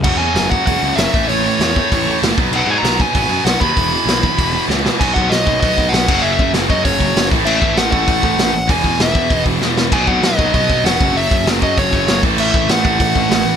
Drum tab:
CC |x-------|--------|x-------|--------|
HH |--o-o-o-|o-o-o-o-|--o-o-o-|o-o-o---|
SD |--o---o-|--o---o-|--o---o-|--o---oo|
BD |o--oo--o|---oo--o|---oo--o|o--oo---|

CC |x------x|--------|x-------|--------|
HH |--o-o-o-|--o-o-o-|--o-o-o-|o-o-o---|
SD |--o---o-|--o---o-|--o---o-|--o---oo|
BD |oo-ooo-o|-o-ooo-o|-o-ooo--|oo-ooo--|

CC |x-------|--------|x-------|
HH |--o-o-o-|o-o-o-o-|--o-o-o-|
SD |--o---o-|--o---o-|--o---o-|
BD |oo-ooo-o|-o-ooo-o|-o-ooo--|